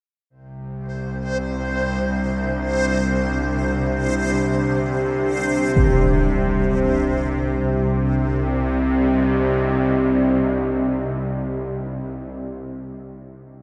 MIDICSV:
0, 0, Header, 1, 5, 480
1, 0, Start_track
1, 0, Key_signature, -3, "minor"
1, 0, Tempo, 500000
1, 13078, End_track
2, 0, Start_track
2, 0, Title_t, "Synth texture"
2, 0, Program_c, 0, 99
2, 292, Note_on_c, 0, 72, 72
2, 7297, Note_off_c, 0, 72, 0
2, 13078, End_track
3, 0, Start_track
3, 0, Title_t, "Ambient pad"
3, 0, Program_c, 1, 92
3, 291, Note_on_c, 1, 62, 77
3, 765, Note_on_c, 1, 72, 61
3, 1590, Note_on_c, 1, 67, 81
3, 7279, Note_off_c, 1, 62, 0
3, 7281, Note_off_c, 1, 67, 0
3, 7285, Note_off_c, 1, 72, 0
3, 7300, Note_on_c, 1, 60, 72
3, 7446, Note_on_c, 1, 67, 74
3, 7574, Note_on_c, 1, 74, 64
3, 7697, Note_on_c, 1, 75, 67
3, 11513, Note_off_c, 1, 60, 0
3, 11515, Note_off_c, 1, 75, 0
3, 11519, Note_off_c, 1, 74, 0
3, 11521, Note_off_c, 1, 67, 0
3, 13078, End_track
4, 0, Start_track
4, 0, Title_t, "Synth drone"
4, 0, Program_c, 2, 95
4, 290, Note_on_c, 2, 36, 62
4, 290, Note_on_c, 2, 48, 58
4, 7271, Note_off_c, 2, 48, 0
4, 7276, Note_off_c, 2, 36, 0
4, 7282, Note_on_c, 2, 48, 64
4, 7287, Note_on_c, 2, 36, 67
4, 11592, Note_off_c, 2, 48, 0
4, 11594, Note_off_c, 2, 36, 0
4, 13078, End_track
5, 0, Start_track
5, 0, Title_t, "Impact"
5, 0, Program_c, 3, 103
5, 5532, Note_on_c, 3, 60, 66
5, 5711, Note_off_c, 3, 60, 0
5, 13078, End_track
0, 0, End_of_file